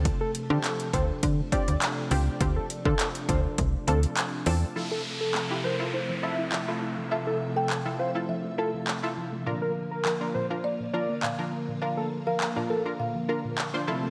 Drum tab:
HH |x-x-xxx-x-xxx-o-|x-x-xxx-x-xxx-o-|----------------|----------------|
CP |----x-------x---|----x-------x---|----x-------x---|----x-------x---|
BD |o-----o-o-o-----|o--o--o-o-------|----------------|----------------|

HH |----------------|----------------|
CP |----x-------x---|----x-------x---|
BD |----------------|----------------|